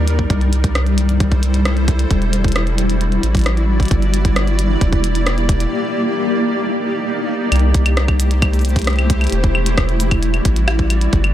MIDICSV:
0, 0, Header, 1, 4, 480
1, 0, Start_track
1, 0, Tempo, 451128
1, 320, Time_signature, 4, 2, 24, 8
1, 12064, End_track
2, 0, Start_track
2, 0, Title_t, "Ambient pad"
2, 0, Program_c, 0, 92
2, 0, Note_on_c, 0, 55, 76
2, 0, Note_on_c, 0, 63, 70
2, 0, Note_on_c, 0, 70, 70
2, 0, Note_on_c, 0, 74, 83
2, 278, Note_off_c, 0, 74, 0
2, 282, Note_off_c, 0, 70, 0
2, 301, Note_off_c, 0, 63, 0
2, 321, Note_on_c, 0, 64, 70
2, 321, Note_on_c, 0, 69, 71
2, 321, Note_on_c, 0, 72, 86
2, 2221, Note_off_c, 0, 69, 0
2, 2222, Note_off_c, 0, 64, 0
2, 2222, Note_off_c, 0, 72, 0
2, 2240, Note_on_c, 0, 64, 72
2, 2241, Note_on_c, 0, 66, 71
2, 2241, Note_on_c, 0, 74, 88
2, 4118, Note_off_c, 0, 55, 0
2, 4142, Note_off_c, 0, 66, 0
2, 4162, Note_on_c, 0, 58, 77
2, 4162, Note_on_c, 0, 67, 72
2, 6042, Note_off_c, 0, 64, 0
2, 6081, Note_on_c, 0, 63, 69
2, 7958, Note_off_c, 0, 74, 0
2, 7963, Note_off_c, 0, 58, 0
2, 7963, Note_off_c, 0, 67, 0
2, 7981, Note_off_c, 0, 63, 0
2, 8001, Note_on_c, 0, 64, 75
2, 8001, Note_on_c, 0, 67, 72
2, 8001, Note_on_c, 0, 72, 90
2, 8002, Note_on_c, 0, 57, 76
2, 9902, Note_off_c, 0, 57, 0
2, 9902, Note_off_c, 0, 67, 0
2, 9902, Note_off_c, 0, 72, 0
2, 9921, Note_on_c, 0, 55, 76
2, 9921, Note_on_c, 0, 66, 75
2, 9921, Note_on_c, 0, 74, 89
2, 11802, Note_off_c, 0, 64, 0
2, 11821, Note_off_c, 0, 55, 0
2, 11821, Note_off_c, 0, 66, 0
2, 12064, Note_off_c, 0, 74, 0
2, 12064, End_track
3, 0, Start_track
3, 0, Title_t, "Analog synth bass"
3, 0, Program_c, 1, 38
3, 0, Note_on_c, 1, 39, 81
3, 272, Note_off_c, 1, 39, 0
3, 320, Note_on_c, 1, 36, 95
3, 2193, Note_off_c, 1, 36, 0
3, 2241, Note_on_c, 1, 28, 96
3, 3393, Note_off_c, 1, 28, 0
3, 3442, Note_on_c, 1, 33, 104
3, 4113, Note_off_c, 1, 33, 0
3, 4161, Note_on_c, 1, 31, 97
3, 5073, Note_off_c, 1, 31, 0
3, 5121, Note_on_c, 1, 28, 90
3, 6033, Note_off_c, 1, 28, 0
3, 8001, Note_on_c, 1, 36, 97
3, 9873, Note_off_c, 1, 36, 0
3, 9921, Note_on_c, 1, 28, 97
3, 11073, Note_off_c, 1, 28, 0
3, 11121, Note_on_c, 1, 33, 106
3, 11793, Note_off_c, 1, 33, 0
3, 11841, Note_on_c, 1, 31, 99
3, 12064, Note_off_c, 1, 31, 0
3, 12064, End_track
4, 0, Start_track
4, 0, Title_t, "Drums"
4, 80, Note_on_c, 9, 42, 86
4, 187, Note_off_c, 9, 42, 0
4, 200, Note_on_c, 9, 36, 83
4, 307, Note_off_c, 9, 36, 0
4, 320, Note_on_c, 9, 36, 116
4, 320, Note_on_c, 9, 42, 50
4, 426, Note_off_c, 9, 42, 0
4, 427, Note_off_c, 9, 36, 0
4, 440, Note_on_c, 9, 42, 24
4, 546, Note_off_c, 9, 42, 0
4, 560, Note_on_c, 9, 42, 85
4, 667, Note_off_c, 9, 42, 0
4, 680, Note_on_c, 9, 36, 101
4, 681, Note_on_c, 9, 42, 50
4, 787, Note_off_c, 9, 36, 0
4, 787, Note_off_c, 9, 42, 0
4, 801, Note_on_c, 9, 37, 110
4, 801, Note_on_c, 9, 42, 48
4, 907, Note_off_c, 9, 37, 0
4, 907, Note_off_c, 9, 42, 0
4, 921, Note_on_c, 9, 42, 24
4, 1027, Note_off_c, 9, 42, 0
4, 1041, Note_on_c, 9, 42, 83
4, 1147, Note_off_c, 9, 42, 0
4, 1160, Note_on_c, 9, 42, 48
4, 1267, Note_off_c, 9, 42, 0
4, 1280, Note_on_c, 9, 36, 109
4, 1280, Note_on_c, 9, 42, 49
4, 1386, Note_off_c, 9, 42, 0
4, 1387, Note_off_c, 9, 36, 0
4, 1400, Note_on_c, 9, 36, 82
4, 1400, Note_on_c, 9, 42, 25
4, 1506, Note_off_c, 9, 42, 0
4, 1507, Note_off_c, 9, 36, 0
4, 1520, Note_on_c, 9, 42, 83
4, 1626, Note_off_c, 9, 42, 0
4, 1640, Note_on_c, 9, 42, 48
4, 1747, Note_off_c, 9, 42, 0
4, 1760, Note_on_c, 9, 37, 113
4, 1760, Note_on_c, 9, 42, 50
4, 1867, Note_off_c, 9, 37, 0
4, 1867, Note_off_c, 9, 42, 0
4, 1880, Note_on_c, 9, 42, 25
4, 1987, Note_off_c, 9, 42, 0
4, 2000, Note_on_c, 9, 42, 86
4, 2001, Note_on_c, 9, 36, 114
4, 2106, Note_off_c, 9, 42, 0
4, 2107, Note_off_c, 9, 36, 0
4, 2120, Note_on_c, 9, 42, 48
4, 2227, Note_off_c, 9, 42, 0
4, 2240, Note_on_c, 9, 42, 50
4, 2241, Note_on_c, 9, 36, 110
4, 2347, Note_off_c, 9, 36, 0
4, 2347, Note_off_c, 9, 42, 0
4, 2360, Note_on_c, 9, 42, 24
4, 2466, Note_off_c, 9, 42, 0
4, 2480, Note_on_c, 9, 42, 85
4, 2586, Note_off_c, 9, 42, 0
4, 2600, Note_on_c, 9, 42, 22
4, 2601, Note_on_c, 9, 36, 97
4, 2640, Note_off_c, 9, 42, 0
4, 2640, Note_on_c, 9, 42, 30
4, 2681, Note_off_c, 9, 42, 0
4, 2681, Note_on_c, 9, 42, 38
4, 2707, Note_off_c, 9, 36, 0
4, 2720, Note_off_c, 9, 42, 0
4, 2720, Note_on_c, 9, 37, 105
4, 2720, Note_on_c, 9, 42, 47
4, 2827, Note_off_c, 9, 37, 0
4, 2827, Note_off_c, 9, 42, 0
4, 2840, Note_on_c, 9, 42, 24
4, 2947, Note_off_c, 9, 42, 0
4, 2961, Note_on_c, 9, 42, 82
4, 3067, Note_off_c, 9, 42, 0
4, 3081, Note_on_c, 9, 42, 50
4, 3188, Note_off_c, 9, 42, 0
4, 3201, Note_on_c, 9, 42, 48
4, 3307, Note_off_c, 9, 42, 0
4, 3321, Note_on_c, 9, 42, 24
4, 3427, Note_off_c, 9, 42, 0
4, 3440, Note_on_c, 9, 42, 83
4, 3547, Note_off_c, 9, 42, 0
4, 3561, Note_on_c, 9, 36, 98
4, 3561, Note_on_c, 9, 42, 46
4, 3585, Note_off_c, 9, 42, 0
4, 3585, Note_on_c, 9, 42, 37
4, 3609, Note_off_c, 9, 42, 0
4, 3609, Note_on_c, 9, 42, 31
4, 3633, Note_off_c, 9, 42, 0
4, 3633, Note_on_c, 9, 42, 25
4, 3657, Note_off_c, 9, 42, 0
4, 3657, Note_on_c, 9, 42, 21
4, 3668, Note_off_c, 9, 36, 0
4, 3682, Note_off_c, 9, 42, 0
4, 3682, Note_on_c, 9, 37, 115
4, 3682, Note_on_c, 9, 42, 49
4, 3788, Note_off_c, 9, 37, 0
4, 3788, Note_off_c, 9, 42, 0
4, 3802, Note_on_c, 9, 42, 24
4, 3908, Note_off_c, 9, 42, 0
4, 4041, Note_on_c, 9, 36, 77
4, 4042, Note_on_c, 9, 42, 22
4, 4071, Note_off_c, 9, 42, 0
4, 4071, Note_on_c, 9, 42, 28
4, 4101, Note_off_c, 9, 42, 0
4, 4101, Note_on_c, 9, 42, 34
4, 4132, Note_off_c, 9, 42, 0
4, 4132, Note_on_c, 9, 42, 39
4, 4148, Note_off_c, 9, 36, 0
4, 4161, Note_on_c, 9, 36, 111
4, 4162, Note_off_c, 9, 42, 0
4, 4162, Note_on_c, 9, 42, 50
4, 4267, Note_off_c, 9, 36, 0
4, 4268, Note_off_c, 9, 42, 0
4, 4282, Note_on_c, 9, 42, 25
4, 4388, Note_off_c, 9, 42, 0
4, 4401, Note_on_c, 9, 42, 89
4, 4508, Note_off_c, 9, 42, 0
4, 4521, Note_on_c, 9, 36, 93
4, 4521, Note_on_c, 9, 42, 51
4, 4627, Note_off_c, 9, 36, 0
4, 4628, Note_off_c, 9, 42, 0
4, 4642, Note_on_c, 9, 37, 107
4, 4642, Note_on_c, 9, 42, 49
4, 4748, Note_off_c, 9, 37, 0
4, 4748, Note_off_c, 9, 42, 0
4, 4761, Note_on_c, 9, 42, 25
4, 4868, Note_off_c, 9, 42, 0
4, 4881, Note_on_c, 9, 42, 86
4, 4988, Note_off_c, 9, 42, 0
4, 5121, Note_on_c, 9, 36, 105
4, 5121, Note_on_c, 9, 42, 51
4, 5227, Note_off_c, 9, 36, 0
4, 5228, Note_off_c, 9, 42, 0
4, 5241, Note_on_c, 9, 36, 79
4, 5242, Note_on_c, 9, 42, 25
4, 5347, Note_off_c, 9, 36, 0
4, 5348, Note_off_c, 9, 42, 0
4, 5362, Note_on_c, 9, 42, 86
4, 5468, Note_off_c, 9, 42, 0
4, 5482, Note_on_c, 9, 42, 50
4, 5588, Note_off_c, 9, 42, 0
4, 5602, Note_on_c, 9, 37, 112
4, 5602, Note_on_c, 9, 42, 52
4, 5709, Note_off_c, 9, 37, 0
4, 5709, Note_off_c, 9, 42, 0
4, 5722, Note_on_c, 9, 42, 26
4, 5828, Note_off_c, 9, 42, 0
4, 5841, Note_on_c, 9, 36, 109
4, 5842, Note_on_c, 9, 42, 88
4, 5947, Note_off_c, 9, 36, 0
4, 5949, Note_off_c, 9, 42, 0
4, 5962, Note_on_c, 9, 42, 50
4, 6069, Note_off_c, 9, 42, 0
4, 8001, Note_on_c, 9, 42, 54
4, 8001, Note_on_c, 9, 75, 55
4, 8040, Note_off_c, 9, 42, 0
4, 8040, Note_on_c, 9, 42, 22
4, 8081, Note_off_c, 9, 42, 0
4, 8081, Note_on_c, 9, 42, 19
4, 8107, Note_off_c, 9, 75, 0
4, 8187, Note_off_c, 9, 42, 0
4, 8240, Note_on_c, 9, 42, 97
4, 8241, Note_on_c, 9, 36, 120
4, 8347, Note_off_c, 9, 36, 0
4, 8347, Note_off_c, 9, 42, 0
4, 8361, Note_on_c, 9, 42, 55
4, 8361, Note_on_c, 9, 75, 85
4, 8467, Note_off_c, 9, 42, 0
4, 8467, Note_off_c, 9, 75, 0
4, 8481, Note_on_c, 9, 37, 117
4, 8481, Note_on_c, 9, 42, 53
4, 8587, Note_off_c, 9, 37, 0
4, 8587, Note_off_c, 9, 42, 0
4, 8601, Note_on_c, 9, 36, 105
4, 8601, Note_on_c, 9, 42, 28
4, 8601, Note_on_c, 9, 75, 56
4, 8707, Note_off_c, 9, 36, 0
4, 8708, Note_off_c, 9, 42, 0
4, 8708, Note_off_c, 9, 75, 0
4, 8721, Note_on_c, 9, 42, 94
4, 8721, Note_on_c, 9, 69, 78
4, 8827, Note_off_c, 9, 42, 0
4, 8827, Note_off_c, 9, 69, 0
4, 8841, Note_on_c, 9, 42, 55
4, 8947, Note_off_c, 9, 42, 0
4, 8961, Note_on_c, 9, 36, 120
4, 8961, Note_on_c, 9, 42, 55
4, 8961, Note_on_c, 9, 75, 83
4, 9067, Note_off_c, 9, 42, 0
4, 9067, Note_off_c, 9, 75, 0
4, 9068, Note_off_c, 9, 36, 0
4, 9081, Note_on_c, 9, 42, 26
4, 9081, Note_on_c, 9, 69, 28
4, 9142, Note_off_c, 9, 42, 0
4, 9142, Note_on_c, 9, 42, 21
4, 9161, Note_off_c, 9, 69, 0
4, 9161, Note_on_c, 9, 69, 38
4, 9201, Note_off_c, 9, 42, 0
4, 9201, Note_on_c, 9, 42, 92
4, 9241, Note_off_c, 9, 69, 0
4, 9241, Note_on_c, 9, 69, 47
4, 9261, Note_off_c, 9, 42, 0
4, 9261, Note_on_c, 9, 42, 14
4, 9321, Note_off_c, 9, 42, 0
4, 9321, Note_on_c, 9, 36, 102
4, 9321, Note_on_c, 9, 42, 53
4, 9347, Note_off_c, 9, 69, 0
4, 9351, Note_off_c, 9, 42, 0
4, 9351, Note_on_c, 9, 42, 42
4, 9381, Note_off_c, 9, 42, 0
4, 9381, Note_on_c, 9, 42, 35
4, 9411, Note_off_c, 9, 42, 0
4, 9411, Note_on_c, 9, 42, 29
4, 9427, Note_off_c, 9, 36, 0
4, 9441, Note_off_c, 9, 42, 0
4, 9441, Note_on_c, 9, 37, 121
4, 9441, Note_on_c, 9, 42, 55
4, 9501, Note_off_c, 9, 42, 0
4, 9501, Note_on_c, 9, 42, 16
4, 9531, Note_off_c, 9, 42, 0
4, 9531, Note_on_c, 9, 42, 13
4, 9547, Note_off_c, 9, 37, 0
4, 9561, Note_off_c, 9, 42, 0
4, 9561, Note_on_c, 9, 42, 27
4, 9561, Note_on_c, 9, 75, 85
4, 9668, Note_off_c, 9, 42, 0
4, 9668, Note_off_c, 9, 75, 0
4, 9681, Note_on_c, 9, 36, 114
4, 9681, Note_on_c, 9, 42, 98
4, 9787, Note_off_c, 9, 42, 0
4, 9788, Note_off_c, 9, 36, 0
4, 9801, Note_on_c, 9, 42, 24
4, 9801, Note_on_c, 9, 75, 55
4, 9831, Note_off_c, 9, 42, 0
4, 9831, Note_on_c, 9, 42, 31
4, 9861, Note_off_c, 9, 42, 0
4, 9861, Note_on_c, 9, 42, 37
4, 9891, Note_off_c, 9, 42, 0
4, 9891, Note_on_c, 9, 42, 45
4, 9907, Note_off_c, 9, 75, 0
4, 9921, Note_off_c, 9, 42, 0
4, 9921, Note_on_c, 9, 42, 55
4, 10028, Note_off_c, 9, 42, 0
4, 10041, Note_on_c, 9, 36, 110
4, 10041, Note_on_c, 9, 42, 28
4, 10147, Note_off_c, 9, 42, 0
4, 10148, Note_off_c, 9, 36, 0
4, 10161, Note_on_c, 9, 75, 81
4, 10267, Note_off_c, 9, 75, 0
4, 10281, Note_on_c, 9, 42, 98
4, 10388, Note_off_c, 9, 42, 0
4, 10401, Note_on_c, 9, 36, 118
4, 10401, Note_on_c, 9, 37, 116
4, 10401, Note_on_c, 9, 42, 55
4, 10401, Note_on_c, 9, 75, 53
4, 10507, Note_off_c, 9, 37, 0
4, 10507, Note_off_c, 9, 42, 0
4, 10507, Note_off_c, 9, 75, 0
4, 10508, Note_off_c, 9, 36, 0
4, 10521, Note_on_c, 9, 42, 28
4, 10627, Note_off_c, 9, 42, 0
4, 10640, Note_on_c, 9, 42, 92
4, 10640, Note_on_c, 9, 69, 75
4, 10747, Note_off_c, 9, 42, 0
4, 10747, Note_off_c, 9, 69, 0
4, 10760, Note_on_c, 9, 42, 53
4, 10760, Note_on_c, 9, 75, 78
4, 10761, Note_on_c, 9, 36, 110
4, 10867, Note_off_c, 9, 42, 0
4, 10867, Note_off_c, 9, 75, 0
4, 10868, Note_off_c, 9, 36, 0
4, 10880, Note_on_c, 9, 42, 55
4, 10987, Note_off_c, 9, 42, 0
4, 11000, Note_on_c, 9, 42, 28
4, 11000, Note_on_c, 9, 75, 53
4, 11106, Note_off_c, 9, 42, 0
4, 11106, Note_off_c, 9, 75, 0
4, 11120, Note_on_c, 9, 42, 97
4, 11121, Note_on_c, 9, 36, 120
4, 11226, Note_off_c, 9, 42, 0
4, 11227, Note_off_c, 9, 36, 0
4, 11240, Note_on_c, 9, 42, 56
4, 11346, Note_off_c, 9, 42, 0
4, 11360, Note_on_c, 9, 37, 126
4, 11360, Note_on_c, 9, 42, 56
4, 11360, Note_on_c, 9, 75, 82
4, 11466, Note_off_c, 9, 37, 0
4, 11466, Note_off_c, 9, 42, 0
4, 11466, Note_off_c, 9, 75, 0
4, 11480, Note_on_c, 9, 42, 27
4, 11481, Note_on_c, 9, 36, 110
4, 11586, Note_off_c, 9, 42, 0
4, 11588, Note_off_c, 9, 36, 0
4, 11600, Note_on_c, 9, 42, 95
4, 11600, Note_on_c, 9, 75, 53
4, 11706, Note_off_c, 9, 42, 0
4, 11706, Note_off_c, 9, 75, 0
4, 11719, Note_on_c, 9, 42, 56
4, 11826, Note_off_c, 9, 42, 0
4, 11840, Note_on_c, 9, 42, 54
4, 11841, Note_on_c, 9, 36, 127
4, 11946, Note_off_c, 9, 42, 0
4, 11948, Note_off_c, 9, 36, 0
4, 11960, Note_on_c, 9, 42, 27
4, 11960, Note_on_c, 9, 75, 76
4, 12064, Note_off_c, 9, 42, 0
4, 12064, Note_off_c, 9, 75, 0
4, 12064, End_track
0, 0, End_of_file